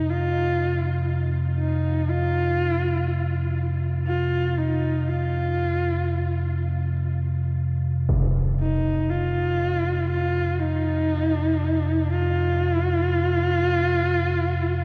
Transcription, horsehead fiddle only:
0, 0, Header, 1, 2, 480
1, 0, Start_track
1, 0, Tempo, 500000
1, 14249, End_track
2, 0, Start_track
2, 0, Title_t, "Horsehead fiddle"
2, 0, Program_c, 0, 110
2, 0, Note_on_c, 0, 63, 92
2, 100, Note_on_c, 0, 65, 105
2, 114, Note_off_c, 0, 63, 0
2, 1053, Note_off_c, 0, 65, 0
2, 1525, Note_on_c, 0, 63, 88
2, 2004, Note_on_c, 0, 65, 105
2, 2018, Note_off_c, 0, 63, 0
2, 3437, Note_off_c, 0, 65, 0
2, 3906, Note_on_c, 0, 65, 96
2, 4397, Note_on_c, 0, 63, 85
2, 4411, Note_off_c, 0, 65, 0
2, 4882, Note_on_c, 0, 65, 85
2, 4896, Note_off_c, 0, 63, 0
2, 6323, Note_off_c, 0, 65, 0
2, 8257, Note_on_c, 0, 63, 91
2, 8737, Note_on_c, 0, 65, 95
2, 8752, Note_off_c, 0, 63, 0
2, 9696, Note_off_c, 0, 65, 0
2, 9702, Note_on_c, 0, 65, 101
2, 10171, Note_on_c, 0, 63, 101
2, 10185, Note_off_c, 0, 65, 0
2, 11618, Note_on_c, 0, 65, 111
2, 11632, Note_off_c, 0, 63, 0
2, 14249, Note_off_c, 0, 65, 0
2, 14249, End_track
0, 0, End_of_file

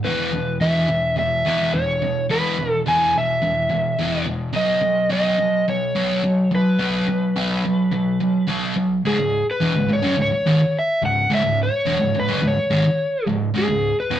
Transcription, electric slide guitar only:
0, 0, Header, 1, 2, 480
1, 0, Start_track
1, 0, Key_signature, 4, "minor"
1, 0, Tempo, 562852
1, 38, Time_signature, 4, 2, 24, 8
1, 12106, End_track
2, 0, Start_track
2, 0, Title_t, "Electric slide guitar"
2, 0, Program_c, 0, 29
2, 38, Note_on_c, 0, 71, 72
2, 484, Note_off_c, 0, 71, 0
2, 523, Note_on_c, 0, 76, 77
2, 1003, Note_off_c, 0, 76, 0
2, 1013, Note_on_c, 0, 76, 83
2, 1480, Note_on_c, 0, 73, 77
2, 1500, Note_off_c, 0, 76, 0
2, 1925, Note_off_c, 0, 73, 0
2, 1969, Note_on_c, 0, 71, 75
2, 2310, Note_off_c, 0, 71, 0
2, 2310, Note_on_c, 0, 69, 75
2, 2411, Note_off_c, 0, 69, 0
2, 2457, Note_on_c, 0, 80, 94
2, 2695, Note_off_c, 0, 80, 0
2, 2710, Note_on_c, 0, 76, 87
2, 3621, Note_off_c, 0, 76, 0
2, 3890, Note_on_c, 0, 75, 96
2, 4362, Note_off_c, 0, 75, 0
2, 4372, Note_on_c, 0, 75, 92
2, 4814, Note_off_c, 0, 75, 0
2, 4857, Note_on_c, 0, 73, 76
2, 5583, Note_off_c, 0, 73, 0
2, 5587, Note_on_c, 0, 71, 85
2, 7222, Note_off_c, 0, 71, 0
2, 7733, Note_on_c, 0, 68, 83
2, 8063, Note_off_c, 0, 68, 0
2, 8110, Note_on_c, 0, 71, 96
2, 8467, Note_off_c, 0, 71, 0
2, 8468, Note_on_c, 0, 73, 88
2, 8679, Note_off_c, 0, 73, 0
2, 8714, Note_on_c, 0, 73, 90
2, 9192, Note_off_c, 0, 73, 0
2, 9199, Note_on_c, 0, 76, 92
2, 9425, Note_off_c, 0, 76, 0
2, 9428, Note_on_c, 0, 78, 112
2, 9639, Note_off_c, 0, 78, 0
2, 9673, Note_on_c, 0, 76, 84
2, 9881, Note_off_c, 0, 76, 0
2, 9918, Note_on_c, 0, 73, 99
2, 10393, Note_off_c, 0, 73, 0
2, 10400, Note_on_c, 0, 71, 92
2, 10627, Note_off_c, 0, 71, 0
2, 10639, Note_on_c, 0, 73, 82
2, 11305, Note_off_c, 0, 73, 0
2, 11581, Note_on_c, 0, 68, 84
2, 11906, Note_off_c, 0, 68, 0
2, 11938, Note_on_c, 0, 71, 98
2, 12106, Note_off_c, 0, 71, 0
2, 12106, End_track
0, 0, End_of_file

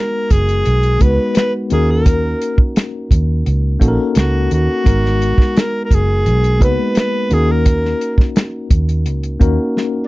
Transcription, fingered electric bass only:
0, 0, Header, 1, 3, 480
1, 0, Start_track
1, 0, Key_signature, 5, "minor"
1, 0, Tempo, 699464
1, 1415, Time_signature, 4, 2, 24, 8
1, 6915, End_track
2, 0, Start_track
2, 0, Title_t, "Fingered electric bass"
2, 0, Program_c, 0, 33
2, 214, Note_on_c, 0, 30, 69
2, 426, Note_off_c, 0, 30, 0
2, 459, Note_on_c, 0, 35, 74
2, 669, Note_off_c, 0, 35, 0
2, 697, Note_on_c, 0, 37, 77
2, 802, Note_off_c, 0, 37, 0
2, 1180, Note_on_c, 0, 39, 78
2, 1602, Note_off_c, 0, 39, 0
2, 2135, Note_on_c, 0, 39, 80
2, 2347, Note_off_c, 0, 39, 0
2, 2380, Note_on_c, 0, 37, 74
2, 2590, Note_off_c, 0, 37, 0
2, 2620, Note_on_c, 0, 34, 72
2, 2724, Note_off_c, 0, 34, 0
2, 2858, Note_on_c, 0, 37, 85
2, 3069, Note_off_c, 0, 37, 0
2, 3100, Note_on_c, 0, 39, 77
2, 3204, Note_off_c, 0, 39, 0
2, 3338, Note_on_c, 0, 32, 90
2, 3655, Note_off_c, 0, 32, 0
2, 4056, Note_on_c, 0, 30, 74
2, 4299, Note_on_c, 0, 35, 78
2, 4309, Note_off_c, 0, 30, 0
2, 4537, Note_off_c, 0, 35, 0
2, 4537, Note_on_c, 0, 37, 76
2, 4642, Note_off_c, 0, 37, 0
2, 5020, Note_on_c, 0, 39, 86
2, 5442, Note_off_c, 0, 39, 0
2, 5977, Note_on_c, 0, 39, 73
2, 6221, Note_off_c, 0, 39, 0
2, 6221, Note_on_c, 0, 37, 79
2, 6430, Note_off_c, 0, 37, 0
2, 6459, Note_on_c, 0, 39, 75
2, 6563, Note_off_c, 0, 39, 0
2, 6915, End_track
3, 0, Start_track
3, 0, Title_t, "Muted fingered electric bass strokes"
3, 1772, Note_on_c, 9, 29, 40
3, 1841, Note_off_c, 9, 29, 0
3, 3692, Note_on_c, 9, 29, 39
3, 3761, Note_off_c, 9, 29, 0
3, 5614, Note_on_c, 9, 29, 41
3, 5683, Note_off_c, 9, 29, 0
3, 6915, End_track
0, 0, End_of_file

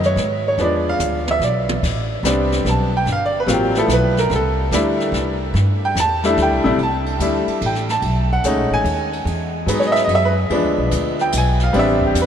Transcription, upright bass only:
0, 0, Header, 1, 3, 480
1, 0, Start_track
1, 0, Key_signature, 0, "major"
1, 0, Tempo, 413223
1, 684, Time_signature, 3, 2, 24, 8
1, 14241, End_track
2, 0, Start_track
2, 0, Title_t, "Upright bass"
2, 0, Program_c, 0, 32
2, 0, Note_on_c, 0, 42, 86
2, 178, Note_off_c, 0, 42, 0
2, 185, Note_on_c, 0, 44, 85
2, 660, Note_off_c, 0, 44, 0
2, 670, Note_on_c, 0, 40, 82
2, 1143, Note_off_c, 0, 40, 0
2, 1152, Note_on_c, 0, 38, 74
2, 1615, Note_off_c, 0, 38, 0
2, 1622, Note_on_c, 0, 35, 80
2, 2098, Note_off_c, 0, 35, 0
2, 2128, Note_on_c, 0, 33, 84
2, 2583, Note_off_c, 0, 33, 0
2, 2590, Note_on_c, 0, 36, 82
2, 3062, Note_off_c, 0, 36, 0
2, 3075, Note_on_c, 0, 35, 87
2, 3545, Note_off_c, 0, 35, 0
2, 3552, Note_on_c, 0, 31, 86
2, 4019, Note_off_c, 0, 31, 0
2, 4026, Note_on_c, 0, 33, 81
2, 4500, Note_off_c, 0, 33, 0
2, 4507, Note_on_c, 0, 35, 89
2, 4980, Note_off_c, 0, 35, 0
2, 4993, Note_on_c, 0, 36, 96
2, 5462, Note_off_c, 0, 36, 0
2, 5475, Note_on_c, 0, 38, 85
2, 5938, Note_off_c, 0, 38, 0
2, 5945, Note_on_c, 0, 36, 89
2, 6418, Note_off_c, 0, 36, 0
2, 6432, Note_on_c, 0, 43, 95
2, 6902, Note_off_c, 0, 43, 0
2, 6916, Note_on_c, 0, 40, 85
2, 7384, Note_off_c, 0, 40, 0
2, 7400, Note_on_c, 0, 38, 84
2, 7562, Note_off_c, 0, 38, 0
2, 7562, Note_on_c, 0, 36, 55
2, 7715, Note_off_c, 0, 36, 0
2, 7722, Note_on_c, 0, 33, 71
2, 7870, Note_off_c, 0, 33, 0
2, 7881, Note_on_c, 0, 36, 78
2, 8347, Note_off_c, 0, 36, 0
2, 8353, Note_on_c, 0, 38, 77
2, 8654, Note_off_c, 0, 38, 0
2, 8843, Note_on_c, 0, 33, 87
2, 9308, Note_off_c, 0, 33, 0
2, 9317, Note_on_c, 0, 35, 92
2, 9785, Note_off_c, 0, 35, 0
2, 9800, Note_on_c, 0, 37, 83
2, 9951, Note_off_c, 0, 37, 0
2, 9951, Note_on_c, 0, 35, 54
2, 10104, Note_off_c, 0, 35, 0
2, 10111, Note_on_c, 0, 33, 63
2, 10265, Note_off_c, 0, 33, 0
2, 10271, Note_on_c, 0, 39, 89
2, 10742, Note_off_c, 0, 39, 0
2, 10747, Note_on_c, 0, 40, 84
2, 11220, Note_off_c, 0, 40, 0
2, 11229, Note_on_c, 0, 44, 70
2, 11697, Note_off_c, 0, 44, 0
2, 11704, Note_on_c, 0, 42, 92
2, 12179, Note_off_c, 0, 42, 0
2, 12195, Note_on_c, 0, 40, 85
2, 12352, Note_off_c, 0, 40, 0
2, 12352, Note_on_c, 0, 38, 58
2, 12513, Note_off_c, 0, 38, 0
2, 12520, Note_on_c, 0, 35, 67
2, 12670, Note_off_c, 0, 35, 0
2, 12679, Note_on_c, 0, 38, 82
2, 13146, Note_off_c, 0, 38, 0
2, 13165, Note_on_c, 0, 35, 89
2, 13630, Note_off_c, 0, 35, 0
2, 13638, Note_on_c, 0, 33, 86
2, 14099, Note_off_c, 0, 33, 0
2, 14106, Note_on_c, 0, 40, 82
2, 14241, Note_off_c, 0, 40, 0
2, 14241, End_track
3, 0, Start_track
3, 0, Title_t, "Muted upright bass strokes"
3, 8684, Note_on_c, 9, 29, 36
3, 8800, Note_off_c, 9, 29, 0
3, 14241, End_track
0, 0, End_of_file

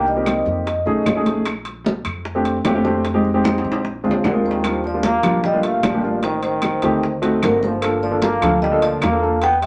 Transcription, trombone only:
0, 0, Header, 1, 2, 480
1, 0, Start_track
1, 0, Key_signature, -2, "major"
1, 0, Tempo, 398142
1, 1753, Time_signature, 4, 2, 24, 8
1, 11649, End_track
2, 0, Start_track
2, 0, Title_t, "Trombone"
2, 0, Program_c, 0, 57
2, 96, Note_on_c, 0, 55, 67
2, 756, Note_off_c, 0, 55, 0
2, 5133, Note_on_c, 0, 50, 64
2, 5236, Note_off_c, 0, 50, 0
2, 5370, Note_on_c, 0, 51, 62
2, 5808, Note_off_c, 0, 51, 0
2, 5849, Note_on_c, 0, 53, 66
2, 6065, Note_off_c, 0, 53, 0
2, 6092, Note_on_c, 0, 58, 79
2, 6529, Note_off_c, 0, 58, 0
2, 6561, Note_on_c, 0, 55, 76
2, 6780, Note_off_c, 0, 55, 0
2, 6806, Note_on_c, 0, 57, 67
2, 7023, Note_off_c, 0, 57, 0
2, 7048, Note_on_c, 0, 53, 73
2, 7487, Note_off_c, 0, 53, 0
2, 7512, Note_on_c, 0, 51, 77
2, 7735, Note_off_c, 0, 51, 0
2, 7759, Note_on_c, 0, 51, 79
2, 8667, Note_off_c, 0, 51, 0
2, 8954, Note_on_c, 0, 50, 72
2, 9176, Note_off_c, 0, 50, 0
2, 9208, Note_on_c, 0, 53, 74
2, 9647, Note_off_c, 0, 53, 0
2, 9672, Note_on_c, 0, 53, 79
2, 9895, Note_off_c, 0, 53, 0
2, 9914, Note_on_c, 0, 58, 86
2, 10359, Note_off_c, 0, 58, 0
2, 10390, Note_on_c, 0, 55, 74
2, 10614, Note_off_c, 0, 55, 0
2, 10642, Note_on_c, 0, 53, 81
2, 10861, Note_off_c, 0, 53, 0
2, 10877, Note_on_c, 0, 58, 85
2, 11321, Note_off_c, 0, 58, 0
2, 11361, Note_on_c, 0, 59, 86
2, 11580, Note_off_c, 0, 59, 0
2, 11593, Note_on_c, 0, 55, 86
2, 11649, Note_off_c, 0, 55, 0
2, 11649, End_track
0, 0, End_of_file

